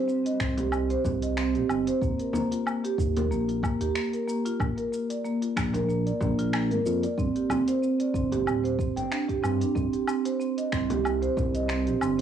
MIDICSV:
0, 0, Header, 1, 5, 480
1, 0, Start_track
1, 0, Key_signature, -3, "minor"
1, 0, Tempo, 645161
1, 1500, Time_signature, 4, 2, 24, 8
1, 9087, End_track
2, 0, Start_track
2, 0, Title_t, "Marimba"
2, 0, Program_c, 0, 12
2, 58, Note_on_c, 0, 60, 82
2, 178, Note_off_c, 0, 60, 0
2, 192, Note_on_c, 0, 75, 81
2, 289, Note_off_c, 0, 75, 0
2, 300, Note_on_c, 0, 60, 103
2, 419, Note_off_c, 0, 60, 0
2, 435, Note_on_c, 0, 67, 95
2, 536, Note_off_c, 0, 67, 0
2, 543, Note_on_c, 0, 60, 83
2, 616, Note_off_c, 0, 60, 0
2, 674, Note_on_c, 0, 72, 101
2, 734, Note_off_c, 0, 72, 0
2, 782, Note_on_c, 0, 60, 75
2, 899, Note_off_c, 0, 60, 0
2, 913, Note_on_c, 0, 75, 80
2, 974, Note_off_c, 0, 75, 0
2, 1020, Note_on_c, 0, 60, 96
2, 1095, Note_off_c, 0, 60, 0
2, 1153, Note_on_c, 0, 67, 74
2, 1255, Note_off_c, 0, 67, 0
2, 1261, Note_on_c, 0, 60, 96
2, 1379, Note_off_c, 0, 60, 0
2, 1393, Note_on_c, 0, 72, 103
2, 1495, Note_off_c, 0, 72, 0
2, 1504, Note_on_c, 0, 58, 76
2, 1620, Note_off_c, 0, 58, 0
2, 1633, Note_on_c, 0, 70, 65
2, 1730, Note_off_c, 0, 70, 0
2, 1738, Note_on_c, 0, 58, 112
2, 1857, Note_off_c, 0, 58, 0
2, 1871, Note_on_c, 0, 65, 89
2, 1974, Note_off_c, 0, 65, 0
2, 1980, Note_on_c, 0, 58, 78
2, 2055, Note_off_c, 0, 58, 0
2, 2114, Note_on_c, 0, 67, 102
2, 2174, Note_off_c, 0, 67, 0
2, 2225, Note_on_c, 0, 58, 73
2, 2341, Note_off_c, 0, 58, 0
2, 2356, Note_on_c, 0, 70, 75
2, 2415, Note_off_c, 0, 70, 0
2, 2463, Note_on_c, 0, 58, 100
2, 2536, Note_off_c, 0, 58, 0
2, 2592, Note_on_c, 0, 65, 81
2, 2694, Note_off_c, 0, 65, 0
2, 2702, Note_on_c, 0, 58, 104
2, 2819, Note_off_c, 0, 58, 0
2, 2832, Note_on_c, 0, 67, 107
2, 2935, Note_off_c, 0, 67, 0
2, 2941, Note_on_c, 0, 58, 80
2, 3059, Note_off_c, 0, 58, 0
2, 3073, Note_on_c, 0, 70, 73
2, 3169, Note_off_c, 0, 70, 0
2, 3180, Note_on_c, 0, 58, 99
2, 3299, Note_off_c, 0, 58, 0
2, 3312, Note_on_c, 0, 65, 106
2, 3414, Note_off_c, 0, 65, 0
2, 3423, Note_on_c, 0, 58, 78
2, 3496, Note_off_c, 0, 58, 0
2, 3552, Note_on_c, 0, 70, 89
2, 3613, Note_off_c, 0, 70, 0
2, 3662, Note_on_c, 0, 58, 77
2, 3780, Note_off_c, 0, 58, 0
2, 3792, Note_on_c, 0, 74, 70
2, 3853, Note_off_c, 0, 74, 0
2, 3901, Note_on_c, 0, 58, 107
2, 3975, Note_off_c, 0, 58, 0
2, 4032, Note_on_c, 0, 65, 76
2, 4134, Note_off_c, 0, 65, 0
2, 4140, Note_on_c, 0, 58, 103
2, 4259, Note_off_c, 0, 58, 0
2, 4271, Note_on_c, 0, 70, 102
2, 4374, Note_off_c, 0, 70, 0
2, 4380, Note_on_c, 0, 58, 86
2, 4498, Note_off_c, 0, 58, 0
2, 4512, Note_on_c, 0, 74, 79
2, 4609, Note_off_c, 0, 74, 0
2, 4621, Note_on_c, 0, 58, 98
2, 4739, Note_off_c, 0, 58, 0
2, 4753, Note_on_c, 0, 65, 109
2, 4855, Note_off_c, 0, 65, 0
2, 4860, Note_on_c, 0, 58, 84
2, 4935, Note_off_c, 0, 58, 0
2, 4992, Note_on_c, 0, 70, 103
2, 5054, Note_off_c, 0, 70, 0
2, 5103, Note_on_c, 0, 58, 78
2, 5220, Note_off_c, 0, 58, 0
2, 5235, Note_on_c, 0, 74, 82
2, 5295, Note_off_c, 0, 74, 0
2, 5343, Note_on_c, 0, 60, 96
2, 5416, Note_off_c, 0, 60, 0
2, 5473, Note_on_c, 0, 67, 70
2, 5575, Note_off_c, 0, 67, 0
2, 5583, Note_on_c, 0, 60, 103
2, 5700, Note_off_c, 0, 60, 0
2, 5715, Note_on_c, 0, 72, 92
2, 5816, Note_off_c, 0, 72, 0
2, 5821, Note_on_c, 0, 60, 81
2, 5939, Note_off_c, 0, 60, 0
2, 5954, Note_on_c, 0, 74, 72
2, 6050, Note_off_c, 0, 74, 0
2, 6058, Note_on_c, 0, 60, 99
2, 6178, Note_off_c, 0, 60, 0
2, 6191, Note_on_c, 0, 67, 100
2, 6294, Note_off_c, 0, 67, 0
2, 6299, Note_on_c, 0, 60, 86
2, 6374, Note_off_c, 0, 60, 0
2, 6428, Note_on_c, 0, 72, 101
2, 6491, Note_off_c, 0, 72, 0
2, 6538, Note_on_c, 0, 60, 76
2, 6657, Note_off_c, 0, 60, 0
2, 6669, Note_on_c, 0, 79, 111
2, 6773, Note_off_c, 0, 79, 0
2, 6775, Note_on_c, 0, 62, 81
2, 6853, Note_off_c, 0, 62, 0
2, 6909, Note_on_c, 0, 67, 98
2, 7007, Note_off_c, 0, 67, 0
2, 7015, Note_on_c, 0, 60, 100
2, 7142, Note_off_c, 0, 60, 0
2, 7148, Note_on_c, 0, 62, 81
2, 7252, Note_off_c, 0, 62, 0
2, 7255, Note_on_c, 0, 60, 92
2, 7333, Note_off_c, 0, 60, 0
2, 7389, Note_on_c, 0, 67, 71
2, 7493, Note_off_c, 0, 67, 0
2, 7499, Note_on_c, 0, 60, 100
2, 7618, Note_off_c, 0, 60, 0
2, 7629, Note_on_c, 0, 72, 93
2, 7733, Note_off_c, 0, 72, 0
2, 7736, Note_on_c, 0, 60, 77
2, 7857, Note_off_c, 0, 60, 0
2, 7870, Note_on_c, 0, 75, 77
2, 7968, Note_off_c, 0, 75, 0
2, 7978, Note_on_c, 0, 60, 106
2, 8098, Note_off_c, 0, 60, 0
2, 8112, Note_on_c, 0, 67, 102
2, 8214, Note_off_c, 0, 67, 0
2, 8218, Note_on_c, 0, 60, 81
2, 8294, Note_off_c, 0, 60, 0
2, 8348, Note_on_c, 0, 72, 97
2, 8411, Note_off_c, 0, 72, 0
2, 8459, Note_on_c, 0, 60, 73
2, 8578, Note_off_c, 0, 60, 0
2, 8590, Note_on_c, 0, 75, 85
2, 8653, Note_off_c, 0, 75, 0
2, 8693, Note_on_c, 0, 60, 101
2, 8772, Note_off_c, 0, 60, 0
2, 8828, Note_on_c, 0, 67, 74
2, 8932, Note_off_c, 0, 67, 0
2, 8938, Note_on_c, 0, 60, 108
2, 9057, Note_off_c, 0, 60, 0
2, 9087, End_track
3, 0, Start_track
3, 0, Title_t, "Analog synth bass"
3, 0, Program_c, 1, 38
3, 300, Note_on_c, 1, 36, 85
3, 711, Note_off_c, 1, 36, 0
3, 780, Note_on_c, 1, 36, 100
3, 1149, Note_on_c, 1, 34, 93
3, 1161, Note_off_c, 1, 36, 0
3, 1216, Note_off_c, 1, 34, 0
3, 1259, Note_on_c, 1, 31, 84
3, 1414, Note_off_c, 1, 31, 0
3, 1497, Note_on_c, 1, 39, 94
3, 1578, Note_off_c, 1, 39, 0
3, 2217, Note_on_c, 1, 39, 88
3, 2458, Note_on_c, 1, 34, 85
3, 2469, Note_off_c, 1, 39, 0
3, 2747, Note_off_c, 1, 34, 0
3, 2830, Note_on_c, 1, 39, 90
3, 2896, Note_off_c, 1, 39, 0
3, 3420, Note_on_c, 1, 34, 94
3, 3499, Note_off_c, 1, 34, 0
3, 4140, Note_on_c, 1, 34, 88
3, 4551, Note_off_c, 1, 34, 0
3, 4621, Note_on_c, 1, 34, 104
3, 4991, Note_on_c, 1, 32, 98
3, 5002, Note_off_c, 1, 34, 0
3, 5057, Note_off_c, 1, 32, 0
3, 5102, Note_on_c, 1, 41, 89
3, 5255, Note_off_c, 1, 41, 0
3, 5340, Note_on_c, 1, 31, 90
3, 5419, Note_off_c, 1, 31, 0
3, 6058, Note_on_c, 1, 31, 83
3, 6298, Note_on_c, 1, 26, 94
3, 6309, Note_off_c, 1, 31, 0
3, 6587, Note_off_c, 1, 26, 0
3, 6671, Note_on_c, 1, 31, 99
3, 6737, Note_off_c, 1, 31, 0
3, 7020, Note_on_c, 1, 43, 82
3, 7174, Note_off_c, 1, 43, 0
3, 7258, Note_on_c, 1, 36, 96
3, 7339, Note_off_c, 1, 36, 0
3, 7978, Note_on_c, 1, 36, 85
3, 8390, Note_off_c, 1, 36, 0
3, 8459, Note_on_c, 1, 36, 102
3, 8831, Note_on_c, 1, 34, 96
3, 8842, Note_off_c, 1, 36, 0
3, 8896, Note_off_c, 1, 34, 0
3, 8939, Note_on_c, 1, 31, 82
3, 9087, Note_off_c, 1, 31, 0
3, 9087, End_track
4, 0, Start_track
4, 0, Title_t, "Frame drum"
4, 427, Note_on_c, 9, 64, 81
4, 501, Note_off_c, 9, 64, 0
4, 782, Note_on_c, 9, 64, 78
4, 857, Note_off_c, 9, 64, 0
4, 1734, Note_on_c, 9, 64, 93
4, 1808, Note_off_c, 9, 64, 0
4, 2356, Note_on_c, 9, 64, 94
4, 2431, Note_off_c, 9, 64, 0
4, 4267, Note_on_c, 9, 64, 84
4, 4341, Note_off_c, 9, 64, 0
4, 4617, Note_on_c, 9, 64, 89
4, 4692, Note_off_c, 9, 64, 0
4, 5578, Note_on_c, 9, 64, 88
4, 5652, Note_off_c, 9, 64, 0
4, 6193, Note_on_c, 9, 64, 82
4, 6267, Note_off_c, 9, 64, 0
4, 8111, Note_on_c, 9, 64, 85
4, 8185, Note_off_c, 9, 64, 0
4, 8461, Note_on_c, 9, 64, 75
4, 8535, Note_off_c, 9, 64, 0
4, 9087, End_track
5, 0, Start_track
5, 0, Title_t, "Drums"
5, 67, Note_on_c, 9, 82, 40
5, 141, Note_off_c, 9, 82, 0
5, 194, Note_on_c, 9, 46, 45
5, 201, Note_on_c, 9, 82, 21
5, 269, Note_off_c, 9, 46, 0
5, 275, Note_off_c, 9, 82, 0
5, 299, Note_on_c, 9, 26, 76
5, 299, Note_on_c, 9, 36, 105
5, 305, Note_on_c, 9, 82, 73
5, 373, Note_off_c, 9, 36, 0
5, 374, Note_off_c, 9, 26, 0
5, 380, Note_off_c, 9, 82, 0
5, 430, Note_on_c, 9, 46, 54
5, 437, Note_on_c, 9, 82, 33
5, 505, Note_off_c, 9, 46, 0
5, 511, Note_off_c, 9, 82, 0
5, 537, Note_on_c, 9, 77, 72
5, 543, Note_on_c, 9, 82, 43
5, 612, Note_off_c, 9, 77, 0
5, 618, Note_off_c, 9, 82, 0
5, 671, Note_on_c, 9, 46, 30
5, 678, Note_on_c, 9, 82, 22
5, 746, Note_off_c, 9, 46, 0
5, 752, Note_off_c, 9, 82, 0
5, 779, Note_on_c, 9, 36, 111
5, 783, Note_on_c, 9, 82, 72
5, 854, Note_off_c, 9, 36, 0
5, 857, Note_off_c, 9, 82, 0
5, 911, Note_on_c, 9, 46, 59
5, 917, Note_on_c, 9, 82, 35
5, 985, Note_off_c, 9, 46, 0
5, 991, Note_off_c, 9, 82, 0
5, 1020, Note_on_c, 9, 26, 85
5, 1026, Note_on_c, 9, 82, 46
5, 1094, Note_off_c, 9, 26, 0
5, 1100, Note_off_c, 9, 82, 0
5, 1153, Note_on_c, 9, 46, 30
5, 1159, Note_on_c, 9, 82, 21
5, 1227, Note_off_c, 9, 46, 0
5, 1233, Note_off_c, 9, 82, 0
5, 1260, Note_on_c, 9, 77, 74
5, 1266, Note_on_c, 9, 82, 74
5, 1334, Note_off_c, 9, 77, 0
5, 1340, Note_off_c, 9, 82, 0
5, 1392, Note_on_c, 9, 46, 59
5, 1398, Note_on_c, 9, 82, 34
5, 1467, Note_off_c, 9, 46, 0
5, 1473, Note_off_c, 9, 82, 0
5, 1498, Note_on_c, 9, 36, 125
5, 1506, Note_on_c, 9, 82, 46
5, 1573, Note_off_c, 9, 36, 0
5, 1580, Note_off_c, 9, 82, 0
5, 1631, Note_on_c, 9, 46, 41
5, 1637, Note_on_c, 9, 82, 23
5, 1706, Note_off_c, 9, 46, 0
5, 1712, Note_off_c, 9, 82, 0
5, 1748, Note_on_c, 9, 82, 76
5, 1822, Note_off_c, 9, 82, 0
5, 1875, Note_on_c, 9, 46, 56
5, 1881, Note_on_c, 9, 82, 35
5, 1949, Note_off_c, 9, 46, 0
5, 1955, Note_off_c, 9, 82, 0
5, 1984, Note_on_c, 9, 77, 73
5, 1990, Note_on_c, 9, 82, 44
5, 2058, Note_off_c, 9, 77, 0
5, 2064, Note_off_c, 9, 82, 0
5, 2117, Note_on_c, 9, 46, 45
5, 2123, Note_on_c, 9, 82, 24
5, 2192, Note_off_c, 9, 46, 0
5, 2198, Note_off_c, 9, 82, 0
5, 2218, Note_on_c, 9, 36, 108
5, 2228, Note_on_c, 9, 82, 84
5, 2292, Note_off_c, 9, 36, 0
5, 2303, Note_off_c, 9, 82, 0
5, 2354, Note_on_c, 9, 46, 54
5, 2361, Note_on_c, 9, 82, 35
5, 2429, Note_off_c, 9, 46, 0
5, 2435, Note_off_c, 9, 82, 0
5, 2468, Note_on_c, 9, 82, 41
5, 2542, Note_off_c, 9, 82, 0
5, 2594, Note_on_c, 9, 46, 29
5, 2600, Note_on_c, 9, 82, 23
5, 2669, Note_off_c, 9, 46, 0
5, 2675, Note_off_c, 9, 82, 0
5, 2699, Note_on_c, 9, 36, 105
5, 2704, Note_on_c, 9, 77, 69
5, 2710, Note_on_c, 9, 82, 78
5, 2773, Note_off_c, 9, 36, 0
5, 2778, Note_off_c, 9, 77, 0
5, 2784, Note_off_c, 9, 82, 0
5, 2832, Note_on_c, 9, 46, 59
5, 2838, Note_on_c, 9, 82, 35
5, 2906, Note_off_c, 9, 46, 0
5, 2913, Note_off_c, 9, 82, 0
5, 2941, Note_on_c, 9, 26, 84
5, 2947, Note_on_c, 9, 82, 50
5, 3015, Note_off_c, 9, 26, 0
5, 3021, Note_off_c, 9, 82, 0
5, 3074, Note_on_c, 9, 46, 33
5, 3080, Note_on_c, 9, 82, 24
5, 3149, Note_off_c, 9, 46, 0
5, 3155, Note_off_c, 9, 82, 0
5, 3189, Note_on_c, 9, 82, 80
5, 3264, Note_off_c, 9, 82, 0
5, 3316, Note_on_c, 9, 46, 55
5, 3322, Note_on_c, 9, 82, 34
5, 3390, Note_off_c, 9, 46, 0
5, 3396, Note_off_c, 9, 82, 0
5, 3420, Note_on_c, 9, 36, 120
5, 3423, Note_on_c, 9, 77, 76
5, 3429, Note_on_c, 9, 82, 46
5, 3494, Note_off_c, 9, 36, 0
5, 3498, Note_off_c, 9, 77, 0
5, 3504, Note_off_c, 9, 82, 0
5, 3554, Note_on_c, 9, 46, 39
5, 3560, Note_on_c, 9, 82, 23
5, 3628, Note_off_c, 9, 46, 0
5, 3634, Note_off_c, 9, 82, 0
5, 3669, Note_on_c, 9, 82, 83
5, 3744, Note_off_c, 9, 82, 0
5, 3796, Note_on_c, 9, 46, 57
5, 3802, Note_on_c, 9, 82, 35
5, 3870, Note_off_c, 9, 46, 0
5, 3876, Note_off_c, 9, 82, 0
5, 3907, Note_on_c, 9, 82, 43
5, 3981, Note_off_c, 9, 82, 0
5, 4034, Note_on_c, 9, 46, 43
5, 4040, Note_on_c, 9, 82, 23
5, 4108, Note_off_c, 9, 46, 0
5, 4114, Note_off_c, 9, 82, 0
5, 4140, Note_on_c, 9, 36, 112
5, 4143, Note_on_c, 9, 26, 77
5, 4143, Note_on_c, 9, 77, 73
5, 4149, Note_on_c, 9, 82, 82
5, 4215, Note_off_c, 9, 36, 0
5, 4217, Note_off_c, 9, 26, 0
5, 4217, Note_off_c, 9, 77, 0
5, 4223, Note_off_c, 9, 82, 0
5, 4273, Note_on_c, 9, 46, 56
5, 4279, Note_on_c, 9, 82, 34
5, 4347, Note_off_c, 9, 46, 0
5, 4353, Note_off_c, 9, 82, 0
5, 4387, Note_on_c, 9, 82, 42
5, 4461, Note_off_c, 9, 82, 0
5, 4513, Note_on_c, 9, 46, 30
5, 4519, Note_on_c, 9, 82, 23
5, 4588, Note_off_c, 9, 46, 0
5, 4594, Note_off_c, 9, 82, 0
5, 4621, Note_on_c, 9, 36, 106
5, 4624, Note_on_c, 9, 82, 73
5, 4695, Note_off_c, 9, 36, 0
5, 4699, Note_off_c, 9, 82, 0
5, 4753, Note_on_c, 9, 46, 54
5, 4759, Note_on_c, 9, 82, 36
5, 4828, Note_off_c, 9, 46, 0
5, 4834, Note_off_c, 9, 82, 0
5, 4861, Note_on_c, 9, 26, 77
5, 4861, Note_on_c, 9, 77, 77
5, 4867, Note_on_c, 9, 82, 49
5, 4935, Note_off_c, 9, 26, 0
5, 4935, Note_off_c, 9, 77, 0
5, 4941, Note_off_c, 9, 82, 0
5, 4994, Note_on_c, 9, 46, 30
5, 5000, Note_on_c, 9, 82, 24
5, 5068, Note_off_c, 9, 46, 0
5, 5074, Note_off_c, 9, 82, 0
5, 5105, Note_on_c, 9, 82, 80
5, 5179, Note_off_c, 9, 82, 0
5, 5233, Note_on_c, 9, 46, 55
5, 5239, Note_on_c, 9, 82, 37
5, 5307, Note_off_c, 9, 46, 0
5, 5314, Note_off_c, 9, 82, 0
5, 5340, Note_on_c, 9, 36, 122
5, 5347, Note_on_c, 9, 82, 46
5, 5414, Note_off_c, 9, 36, 0
5, 5422, Note_off_c, 9, 82, 0
5, 5474, Note_on_c, 9, 46, 41
5, 5480, Note_on_c, 9, 82, 22
5, 5548, Note_off_c, 9, 46, 0
5, 5554, Note_off_c, 9, 82, 0
5, 5579, Note_on_c, 9, 77, 74
5, 5585, Note_on_c, 9, 82, 84
5, 5654, Note_off_c, 9, 77, 0
5, 5660, Note_off_c, 9, 82, 0
5, 5712, Note_on_c, 9, 46, 55
5, 5718, Note_on_c, 9, 82, 35
5, 5787, Note_off_c, 9, 46, 0
5, 5793, Note_off_c, 9, 82, 0
5, 5828, Note_on_c, 9, 82, 46
5, 5902, Note_off_c, 9, 82, 0
5, 5952, Note_on_c, 9, 46, 43
5, 5958, Note_on_c, 9, 82, 23
5, 6026, Note_off_c, 9, 46, 0
5, 6033, Note_off_c, 9, 82, 0
5, 6059, Note_on_c, 9, 36, 109
5, 6067, Note_on_c, 9, 82, 80
5, 6133, Note_off_c, 9, 36, 0
5, 6142, Note_off_c, 9, 82, 0
5, 6194, Note_on_c, 9, 46, 53
5, 6200, Note_on_c, 9, 82, 31
5, 6268, Note_off_c, 9, 46, 0
5, 6274, Note_off_c, 9, 82, 0
5, 6304, Note_on_c, 9, 77, 67
5, 6310, Note_on_c, 9, 82, 45
5, 6378, Note_off_c, 9, 77, 0
5, 6384, Note_off_c, 9, 82, 0
5, 6437, Note_on_c, 9, 46, 28
5, 6443, Note_on_c, 9, 82, 22
5, 6511, Note_off_c, 9, 46, 0
5, 6517, Note_off_c, 9, 82, 0
5, 6538, Note_on_c, 9, 36, 113
5, 6549, Note_on_c, 9, 82, 76
5, 6613, Note_off_c, 9, 36, 0
5, 6623, Note_off_c, 9, 82, 0
5, 6675, Note_on_c, 9, 46, 55
5, 6681, Note_on_c, 9, 82, 35
5, 6749, Note_off_c, 9, 46, 0
5, 6756, Note_off_c, 9, 82, 0
5, 6782, Note_on_c, 9, 26, 76
5, 6788, Note_on_c, 9, 82, 47
5, 6856, Note_off_c, 9, 26, 0
5, 6862, Note_off_c, 9, 82, 0
5, 6910, Note_on_c, 9, 36, 64
5, 6913, Note_on_c, 9, 46, 29
5, 6919, Note_on_c, 9, 82, 23
5, 6984, Note_off_c, 9, 36, 0
5, 6988, Note_off_c, 9, 46, 0
5, 6994, Note_off_c, 9, 82, 0
5, 7019, Note_on_c, 9, 77, 72
5, 7025, Note_on_c, 9, 82, 83
5, 7094, Note_off_c, 9, 77, 0
5, 7100, Note_off_c, 9, 82, 0
5, 7152, Note_on_c, 9, 46, 52
5, 7158, Note_on_c, 9, 82, 35
5, 7226, Note_off_c, 9, 46, 0
5, 7233, Note_off_c, 9, 82, 0
5, 7258, Note_on_c, 9, 36, 120
5, 7265, Note_on_c, 9, 82, 43
5, 7333, Note_off_c, 9, 36, 0
5, 7340, Note_off_c, 9, 82, 0
5, 7390, Note_on_c, 9, 46, 41
5, 7396, Note_on_c, 9, 82, 20
5, 7465, Note_off_c, 9, 46, 0
5, 7471, Note_off_c, 9, 82, 0
5, 7496, Note_on_c, 9, 77, 81
5, 7502, Note_on_c, 9, 82, 77
5, 7570, Note_off_c, 9, 77, 0
5, 7577, Note_off_c, 9, 82, 0
5, 7630, Note_on_c, 9, 46, 55
5, 7636, Note_on_c, 9, 82, 34
5, 7704, Note_off_c, 9, 46, 0
5, 7710, Note_off_c, 9, 82, 0
5, 7743, Note_on_c, 9, 82, 42
5, 7818, Note_off_c, 9, 82, 0
5, 7871, Note_on_c, 9, 46, 42
5, 7877, Note_on_c, 9, 82, 22
5, 7946, Note_off_c, 9, 46, 0
5, 7952, Note_off_c, 9, 82, 0
5, 7978, Note_on_c, 9, 26, 68
5, 7979, Note_on_c, 9, 36, 105
5, 7984, Note_on_c, 9, 82, 77
5, 8052, Note_off_c, 9, 26, 0
5, 8053, Note_off_c, 9, 36, 0
5, 8058, Note_off_c, 9, 82, 0
5, 8110, Note_on_c, 9, 46, 53
5, 8116, Note_on_c, 9, 82, 31
5, 8184, Note_off_c, 9, 46, 0
5, 8191, Note_off_c, 9, 82, 0
5, 8222, Note_on_c, 9, 77, 72
5, 8228, Note_on_c, 9, 82, 44
5, 8296, Note_off_c, 9, 77, 0
5, 8302, Note_off_c, 9, 82, 0
5, 8351, Note_on_c, 9, 46, 29
5, 8357, Note_on_c, 9, 82, 22
5, 8426, Note_off_c, 9, 46, 0
5, 8432, Note_off_c, 9, 82, 0
5, 8459, Note_on_c, 9, 36, 102
5, 8466, Note_on_c, 9, 82, 72
5, 8534, Note_off_c, 9, 36, 0
5, 8541, Note_off_c, 9, 82, 0
5, 8591, Note_on_c, 9, 46, 56
5, 8597, Note_on_c, 9, 82, 36
5, 8665, Note_off_c, 9, 46, 0
5, 8671, Note_off_c, 9, 82, 0
5, 8698, Note_on_c, 9, 26, 78
5, 8704, Note_on_c, 9, 82, 44
5, 8772, Note_off_c, 9, 26, 0
5, 8778, Note_off_c, 9, 82, 0
5, 8831, Note_on_c, 9, 46, 31
5, 8837, Note_on_c, 9, 82, 22
5, 8905, Note_off_c, 9, 46, 0
5, 8911, Note_off_c, 9, 82, 0
5, 8938, Note_on_c, 9, 77, 73
5, 8944, Note_on_c, 9, 82, 78
5, 9013, Note_off_c, 9, 77, 0
5, 9019, Note_off_c, 9, 82, 0
5, 9087, End_track
0, 0, End_of_file